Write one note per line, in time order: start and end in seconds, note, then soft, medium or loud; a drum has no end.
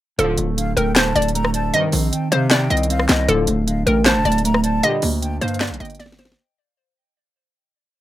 0.18 0.37 D1 loud
0.18 0.46 A2 loud
0.18 0.56 D3 medium
0.18 0.46 D3 medium
0.18 0.46 F3 loud
0.18 0.73 A4 loud
0.18 closed hi-hat medium
0.38 0.75 D1 loud
0.38 0.75 A3 medium
0.38 closed hi-hat medium
0.57 0.95 D3 medium
0.57 0.76 F5 medium
0.57 closed hi-hat medium
0.77 1.14 D1 loud
0.77 1.14 A3 medium
0.77 0.92 A#4 medium
0.77 0.95 G5 medium
0.77 closed hi-hat medium
0.96 1.74 D3 medium
0.96 1.11 C5 medium
0.96 1.33 A5 medium
0.96 snare loud
0.96 clap loud
0.96 closed hi-hat medium
1.16 1.71 D1 loud
1.16 1.34 A3 medium
1.16 1.70 D5 medium
1.16 closed hi-hat medium
1.22 closed hi-hat medium
1.28 closed hi-hat medium
1.34 1.74 A3 medium
1.34 1.53 A#5 loud
1.34 closed hi-hat medium
1.45 cross-stick loud
1.54 1.74 D5 medium
1.54 1.73 A5 medium
1.54 closed hi-hat medium
1.73 2.01 G2 loud
1.73 2.01 C3 medium
1.73 2.11 D#3 loud
1.73 2.01 D#3 loud
1.73 2.28 D#5 loud
1.73 closed hi-hat medium
1.92 2.12 A#1 loud
1.92 2.31 C4 medium
1.92 open hi-hat medium
2.12 2.50 D#3 medium
2.12 2.31 G5 medium
2.12 closed hi-hat medium
2.32 2.69 C3 loud
2.32 2.70 C4 medium
2.32 2.47 C5 loud
2.32 2.50 F5 medium
2.32 closed hi-hat medium
2.51 3.29 D#3 medium
2.51 2.66 D5 loud
2.51 2.87 G5 medium
2.51 snare loud
2.51 clap loud
2.51 closed hi-hat medium
2.70 3.08 C2 loud
2.70 2.88 C4 medium
2.70 3.25 D#5 medium
2.70 closed hi-hat medium
2.77 closed hi-hat medium
2.83 closed hi-hat medium
2.90 3.28 C4 medium
2.90 3.08 F5 medium
2.90 closed hi-hat medium
2.99 cross-stick loud
3.09 3.28 C2 loud
3.09 3.28 D#5 medium
3.09 snare loud
3.09 clap medium
3.09 closed hi-hat medium
3.28 3.47 D1 loud
3.28 3.56 A2 loud
3.28 3.56 D3 loud
3.28 3.66 D3 medium
3.28 3.56 F3 loud
3.28 3.83 A4 medium
3.28 closed hi-hat medium
3.47 3.85 D1 loud
3.47 3.85 A3 medium
3.47 closed hi-hat medium
3.67 4.04 D3 medium
3.67 3.86 F5 medium
3.67 closed hi-hat medium
3.87 4.17 A1 loud
3.87 4.24 A3 medium
3.87 4.02 A#4 medium
3.87 4.05 G5 medium
3.87 closed hi-hat medium
4.05 4.82 D3 medium
4.05 4.21 C5 medium
4.05 4.42 A5 medium
4.05 snare loud
4.05 clap loud
4.05 closed hi-hat medium
4.16 4.25 D#1 loud
4.25 4.81 D1 loud
4.25 4.43 A3 medium
4.25 4.80 D5 medium
4.25 closed hi-hat medium
4.32 closed hi-hat medium
4.38 closed hi-hat medium
4.44 4.83 A3 loud
4.44 4.63 A#5 loud
4.44 closed hi-hat medium
4.54 cross-stick loud
4.64 4.83 D5 medium
4.64 4.82 A5 medium
4.64 closed hi-hat medium
4.83 5.11 A#2 loud
4.83 5.11 D3 loud
4.83 5.21 D3 medium
4.83 5.11 G3 loud
4.83 5.38 D#5 loud
4.83 closed hi-hat medium
5.02 5.40 D2 loud
5.02 5.40 A#3 medium
5.02 open hi-hat medium
5.22 5.59 D3 medium
5.22 5.40 G5 medium
5.22 closed hi-hat medium
5.41 5.72 G2 loud
5.41 5.79 A#3 medium
5.41 5.57 C5 medium
5.41 5.78 F5 medium
5.41 closed hi-hat medium
5.48 closed hi-hat medium
5.54 closed hi-hat medium
5.61 6.38 D3 medium
5.61 5.76 D5 medium
5.61 snare loud
5.61 clap loud
5.61 closed hi-hat medium
5.67 5.80 A#1 medium
5.67 closed hi-hat medium
5.74 closed hi-hat medium
5.80 6.36 G1 loud
5.80 5.98 A#3 medium
5.80 5.95 D#5 medium
5.80 5.98 G5 medium
5.80 closed hi-hat soft
5.85 closed hi-hat medium
5.90 closed hi-hat medium
5.95 closed hi-hat medium
5.99 6.38 A#3 medium
5.99 6.15 D5 medium
5.99 snare medium
5.99 closed hi-hat medium
6.06 snare medium
6.12 snare medium
6.19 6.34 C5 medium
6.19 6.38 D5 medium
6.19 snare medium
6.19 closed hi-hat medium
6.25 snare loud
6.32 snare loud